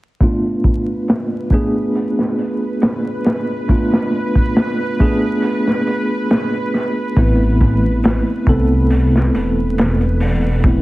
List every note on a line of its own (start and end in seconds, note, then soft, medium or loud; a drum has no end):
0.20 1.47 A3 medium
0.20 1.47 B3 medium
0.20 1.47 D4 medium
0.20 1.48 F4 medium
0.20 10.82 B4 medium
0.20 kick medium
0.20 open hi-hat medium
0.64 kick medium
0.64 open hi-hat medium
1.08 snare loud
1.08 open hi-hat medium
1.51 3.64 A3 medium
1.51 3.65 B3 medium
1.51 3.65 D4 medium
1.51 3.65 G#4 medium
1.51 kick medium
1.51 open hi-hat medium
1.95 open hi-hat medium
2.19 snare soft
2.38 open hi-hat medium
2.82 snare loud
2.82 open hi-hat medium
3.05 closed hi-hat soft
3.25 snare medium
3.25 open hi-hat medium
3.68 4.94 A3 medium
3.68 4.95 B3 medium
3.68 4.95 D4 medium
3.68 4.95 F4 medium
3.68 kick medium
3.68 open hi-hat medium
3.92 snare medium
3.92 open hi-hat medium
4.35 kick medium
4.35 open hi-hat medium
4.56 snare loud
4.56 open hi-hat medium
4.99 7.12 A3 medium
4.99 7.12 B3 medium
4.99 7.13 D4 medium
4.99 7.13 G#4 medium
4.99 kick medium
4.99 open hi-hat medium
5.42 open hi-hat medium
5.67 snare soft
5.87 open hi-hat medium
6.31 snare medium
6.31 open hi-hat medium
6.53 closed hi-hat soft
6.74 snare soft
6.74 open hi-hat medium
7.17 8.23 A1 medium
7.17 8.42 A3 medium
7.17 8.43 B3 medium
7.17 8.43 C4 medium
7.17 8.43 E4 medium
7.17 kick loud
7.17 open hi-hat medium
7.61 kick medium
7.61 open hi-hat medium
8.04 snare loud
8.04 open hi-hat medium
8.47 9.30 C2 medium
8.47 10.59 A3 medium
8.47 10.60 B3 medium
8.47 10.60 C4 medium
8.47 10.61 A4 medium
8.47 kick medium
8.47 open hi-hat medium
8.91 open hi-hat medium
9.16 snare soft
9.35 10.82 E1 loud
9.35 open hi-hat medium
9.78 snare loud
9.78 open hi-hat medium
10.01 closed hi-hat soft
10.20 open hi-hat medium
10.64 10.82 A3 medium
10.64 10.82 B3 medium
10.64 10.82 C4 medium
10.64 10.82 E4 medium
10.64 kick loud
10.64 open hi-hat medium